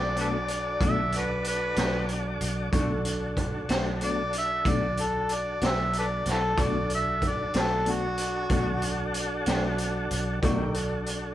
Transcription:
0.00 0.77 B1 medium
0.00 2.69 D4 soft
0.00 2.69 D4 medium
0.00 2.69 F#4 medium
0.00 2.69 A4 medium
0.00 2.69 A4 soft
0.00 0.18 D5 medium
0.00 2.70 D5 medium
0.00 2.70 C#6 medium
0.16 0.36 B2 soft
0.16 0.36 A3 medium
0.16 0.36 D4 medium
0.16 0.37 F#4 medium
0.16 closed hi-hat soft
0.21 0.28 A4 soft
0.21 0.27 B4 soft
0.21 0.81 D5 medium
0.48 closed hi-hat soft
0.81 1.73 B1 medium
0.81 1.00 B2 medium
0.81 1.01 A3 medium
0.81 1.01 D4 medium
0.81 1.01 F#4 medium
0.81 kick medium
0.81 closed hi-hat medium
0.85 1.14 E5 medium
1.12 closed hi-hat soft
1.17 1.24 D4 soft
1.17 1.24 F#4 soft
1.17 1.46 B4 medium
1.44 2.09 B4 medium
1.44 closed hi-hat soft
1.76 2.37 B1 medium
1.76 1.97 A3 soft
1.76 1.97 D4 soft
1.76 1.96 F#4 soft
1.76 snare medium
1.76 closed hi-hat medium
2.09 closed hi-hat soft
2.41 2.70 B1 medium
2.41 closed hi-hat soft
2.71 3.65 B1 medium
2.71 2.92 B2 medium
2.71 2.92 A3 medium
2.71 6.53 D4 medium
2.71 2.93 D4 medium
2.71 6.55 D4 medium
2.71 6.54 F#4 medium
2.71 2.93 F#4 medium
2.71 6.53 A4 soft
2.71 6.54 A4 medium
2.71 6.54 C#6 medium
2.71 kick medium
2.71 closed hi-hat medium
3.05 closed hi-hat medium
3.37 kick medium
3.37 closed hi-hat medium
3.69 4.61 B1 medium
3.69 3.89 A3 soft
3.69 3.89 D4 soft
3.69 3.88 F#4 soft
3.69 snare medium
3.69 closed hi-hat medium
4.01 4.21 B2 soft
4.01 4.21 A3 soft
4.01 4.21 D4 soft
4.01 4.22 F#4 soft
4.01 4.34 D5 medium
4.01 closed hi-hat medium
4.33 closed hi-hat soft
4.38 4.70 E5 medium
4.65 5.57 B1 medium
4.65 4.85 B2 medium
4.65 4.85 A3 medium
4.65 4.86 D4 medium
4.65 4.86 F#4 medium
4.65 5.03 D5 medium
4.65 kick medium
4.65 closed hi-hat medium
4.97 closed hi-hat soft
5.01 5.36 A4 medium
5.29 closed hi-hat soft
5.34 5.69 D5 medium
5.61 6.22 B1 medium
5.61 5.82 A3 soft
5.61 5.82 D4 soft
5.61 5.81 F#4 soft
5.61 snare medium
5.61 closed hi-hat medium
5.67 5.96 E5 medium
5.93 closed hi-hat soft
5.99 6.06 A4 soft
5.99 6.05 B4 soft
5.99 6.27 D5 medium
6.26 6.55 B1 medium
6.26 snare soft
6.26 closed hi-hat soft
6.30 6.39 E4 medium
6.30 6.39 F#4 medium
6.30 6.64 A4 medium
6.57 7.50 B1 medium
6.57 6.77 B2 medium
6.57 6.77 A3 medium
6.57 10.39 D4 soft
6.57 10.40 D4 medium
6.57 6.78 D4 medium
6.57 10.40 F#4 medium
6.57 6.78 F#4 medium
6.57 10.39 A4 soft
6.57 10.40 A4 medium
6.57 10.39 C#6 soft
6.57 kick medium
6.57 closed hi-hat medium
6.62 6.91 D5 medium
6.90 closed hi-hat soft
6.95 7.29 E5 medium
7.22 kick medium
7.22 closed hi-hat soft
7.27 7.56 D5 medium
7.54 8.47 B1 medium
7.54 7.74 A3 soft
7.54 7.74 D4 soft
7.54 7.73 F#4 soft
7.54 snare medium
7.54 closed hi-hat medium
7.59 7.93 A4 medium
7.86 8.05 B2 soft
7.86 8.06 A3 soft
7.86 8.06 D4 soft
7.86 8.07 F#4 medium
7.86 closed hi-hat medium
7.91 9.13 F#4 medium
8.18 closed hi-hat medium
8.50 9.43 B1 medium
8.50 8.70 B2 medium
8.50 8.70 A3 medium
8.50 8.71 D4 medium
8.50 8.71 F#4 medium
8.50 kick medium
8.50 closed hi-hat medium
8.82 closed hi-hat medium
9.14 closed hi-hat medium
9.46 10.07 B1 medium
9.46 9.67 A3 soft
9.46 9.66 D4 soft
9.46 9.66 F#4 soft
9.46 snare medium
9.46 closed hi-hat medium
9.78 closed hi-hat medium
10.11 10.41 B1 medium
10.11 closed hi-hat soft
10.42 11.35 B1 medium
10.42 10.62 B2 medium
10.42 10.75 D#3 medium
10.42 10.63 A3 medium
10.42 10.75 A#3 soft
10.42 10.74 D4 soft
10.42 11.35 D4 medium
10.42 10.63 D4 medium
10.42 10.63 F#4 medium
10.42 10.75 G4 medium
10.42 11.35 A4 soft
10.42 11.35 C#6 medium
10.42 kick medium
10.42 closed hi-hat medium
10.74 11.35 D4 medium
10.74 11.35 F#4 medium
10.74 11.35 A4 medium
10.74 closed hi-hat soft
11.06 closed hi-hat soft

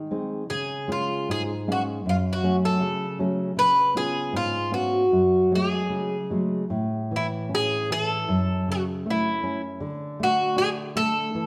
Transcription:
0.00 0.48 D#3 soft
0.11 0.43 G#3 soft
0.11 0.42 C4 soft
0.11 0.43 D#4 soft
0.50 1.27 C#3 medium
0.50 0.91 G#4 medium
0.88 1.51 G#3 soft
0.88 1.52 C#4 soft
0.88 1.52 F4 soft
0.92 1.31 F4 medium
1.29 2.04 G#2 medium
1.29 1.41 G#4 medium
1.67 1.98 G#3 soft
1.67 1.99 C#4 soft
1.67 1.99 F5 soft
1.72 1.82 F#4 medium
2.06 2.80 F#2 medium
2.06 2.16 F4 medium
2.33 2.56 F#4 medium
2.43 3.05 F#3 soft
2.43 3.05 A3 soft
2.43 3.05 C#4 soft
2.65 3.18 A4 medium
2.80 3.55 C#3 medium
3.19 3.50 F#3 soft
3.19 3.50 A3 soft
3.19 3.50 C#4 soft
3.57 4.31 C#3 medium
3.57 3.97 B4 medium
3.95 4.57 B3 soft
3.95 4.57 C#4 soft
3.95 4.58 F4 soft
3.95 4.36 G#4 medium
4.33 5.09 G#2 medium
4.33 4.73 F4 medium
4.71 5.03 B3 soft
4.71 5.03 C#4 soft
4.71 5.54 F#4 medium
4.71 5.04 F5 medium
5.12 5.88 F#2 medium
5.51 6.15 F#3 soft
5.51 6.15 G#3 soft
5.51 6.15 A3 soft
5.55 6.29 G#4 medium
5.90 6.68 C#3 soft
6.30 6.63 F#3 soft
6.30 6.63 G#3 soft
6.30 6.63 A3 soft
6.70 8.25 A2 medium
7.11 7.50 E3 soft
7.16 7.26 E4 medium
7.49 7.88 C#4 soft
7.55 7.92 G#4 medium
7.91 8.28 E3 medium
7.91 8.71 A4 medium
8.29 9.77 F#2 medium
8.68 9.05 C#3 soft
8.68 8.81 F#4 medium
9.06 9.42 A3 soft
9.10 9.61 E4 medium
9.43 9.80 C#4 medium
9.80 11.29 D3 medium
10.20 10.56 A3 soft
10.20 10.57 F#4 medium
10.56 10.94 D4 soft
10.56 10.68 G#4 medium
10.96 11.33 A3 medium
10.96 11.46 A4 medium
11.35 11.46 E3 medium

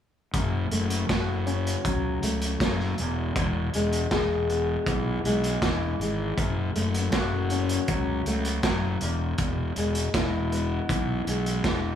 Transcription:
0.33 0.66 F#1 medium
0.33 2.23 F#2 medium
0.33 kick medium
0.33 closed hi-hat medium
0.71 1.04 F#1 medium
0.71 2.23 A3 medium
0.71 closed hi-hat soft
0.90 closed hi-hat medium
1.09 1.74 F#1 medium
1.09 2.98 F#4 medium
1.09 kick medium
1.09 snare medium
1.09 closed hi-hat medium
1.47 2.98 C#4 medium
1.47 closed hi-hat soft
1.67 closed hi-hat medium
1.85 2.17 C#2 medium
1.85 2.60 F#3 medium
1.85 kick loud
1.85 closed hi-hat medium
2.22 2.55 C#2 medium
2.22 2.99 A3 medium
2.22 closed hi-hat medium
2.41 closed hi-hat medium
2.60 2.93 F#1 medium
2.60 2.99 F#3 medium
2.60 kick medium
2.60 snare medium
2.60 closed hi-hat medium
2.80 snare soft
2.98 3.31 E1 medium
2.98 3.37 E2 medium
2.98 closed hi-hat medium
3.35 3.68 E1 medium
3.35 5.25 E2 medium
3.35 kick medium
3.35 closed hi-hat medium
3.73 4.07 E1 medium
3.73 5.25 G#3 medium
3.73 closed hi-hat medium
3.92 closed hi-hat soft
4.11 4.76 E1 medium
4.11 6.00 G#4 medium
4.11 kick medium
4.11 snare medium
4.11 closed hi-hat soft
4.49 6.37 B3 medium
4.49 closed hi-hat medium
4.86 5.19 B1 medium
4.86 5.62 E3 medium
4.86 kick medium
4.86 closed hi-hat soft
5.24 5.56 B1 medium
5.24 6.01 G#3 medium
5.24 closed hi-hat medium
5.44 closed hi-hat soft
5.62 5.94 E1 medium
5.62 6.38 E3 medium
5.62 kick medium
5.62 snare medium
5.62 closed hi-hat soft
5.99 6.32 G#1 medium
5.99 6.38 G#3 medium
5.99 closed hi-hat soft
6.38 6.70 F#1 medium
6.38 8.26 F#2 medium
6.38 kick medium
6.38 closed hi-hat medium
6.75 7.08 F#1 medium
6.75 8.26 A3 medium
6.75 closed hi-hat medium
6.94 closed hi-hat medium
7.12 7.77 F#1 medium
7.12 9.02 F#4 medium
7.12 kick loud
7.12 snare medium
7.12 closed hi-hat medium
7.50 9.02 C#4 medium
7.50 closed hi-hat medium
7.69 closed hi-hat medium
7.88 8.21 C#2 medium
7.88 8.63 F#3 medium
7.88 kick loud
7.88 closed hi-hat medium
8.26 8.58 C#2 medium
8.26 9.02 A3 medium
8.26 closed hi-hat medium
8.45 closed hi-hat medium
8.63 8.96 F#1 medium
8.63 9.02 F#3 medium
8.63 kick medium
8.63 snare medium
8.63 closed hi-hat medium
9.01 9.34 E1 medium
9.01 9.39 E2 medium
9.01 closed hi-hat medium
9.38 9.71 E1 medium
9.38 11.28 E2 medium
9.38 kick medium
9.38 closed hi-hat medium
9.76 10.09 E1 medium
9.76 11.27 G#3 medium
9.76 closed hi-hat medium
9.95 closed hi-hat medium
10.14 10.78 E1 medium
10.14 11.95 E4 medium
10.14 kick medium
10.14 snare medium
10.14 closed hi-hat medium
10.52 11.95 B3 medium
10.52 closed hi-hat soft
10.89 11.22 B1 medium
10.89 11.65 E3 medium
10.89 kick loud
10.89 closed hi-hat medium
11.27 11.59 B1 medium
11.27 11.95 G#3 medium
11.27 closed hi-hat soft
11.46 closed hi-hat soft
11.64 11.95 E3 medium
11.64 kick medium
11.64 snare medium
11.64 closed hi-hat soft

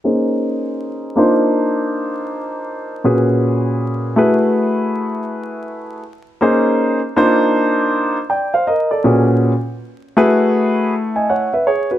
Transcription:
0.04 1.14 A#3 medium
0.04 1.17 C#4 medium
0.04 1.16 D#4 medium
0.04 1.17 G#4 medium
0.04 1.17 C5 medium
1.16 3.00 A#3 medium
1.16 3.01 D4 medium
1.16 3.01 D#4 medium
1.16 3.01 F4 medium
1.16 3.01 C5 medium
3.04 4.17 A#2 medium
3.04 4.17 C#4 medium
3.04 4.16 F#4 medium
3.04 4.16 G#4 medium
3.04 4.17 B4 medium
4.16 6.00 A3 medium
4.16 6.01 E4 medium
4.16 6.01 F#4 medium
4.16 6.01 G#4 medium
4.16 6.01 B4 medium
6.41 6.98 A#3 medium
6.41 6.98 C#4 medium
6.41 6.98 D#4 medium
6.41 6.99 G#4 medium
6.41 6.99 C5 medium
7.16 8.16 A#3 medium
7.16 8.16 D4 medium
7.16 8.16 D#4 medium
7.16 8.16 F4 medium
7.16 8.16 C5 loud
8.30 8.53 D5 soft
8.30 8.52 G5 medium
8.54 8.67 C5 medium
8.54 8.67 F5 medium
8.67 8.90 A#4 medium
8.67 8.90 D#5 medium
8.91 9.27 A4 soft
8.91 9.26 D5 medium
9.04 9.51 A#2 medium
9.04 9.51 C#4 medium
9.04 9.52 F#4 medium
9.04 9.52 G#4 medium
9.04 9.52 B4 medium
10.17 11.46 A3 medium
10.17 11.46 E4 medium
10.17 10.92 F#4 medium
10.17 10.92 G#4 medium
10.17 10.92 B4 loud
11.16 11.29 D#5 soft
11.16 11.29 G#5 medium
11.29 11.52 C#5 medium
11.29 11.52 F#5 medium
11.53 11.67 B4 medium
11.53 11.66 E5 medium
11.67 11.90 G#4 medium
11.67 11.89 C#5 medium
11.91 11.98 F#4 soft
11.91 11.98 B4 medium

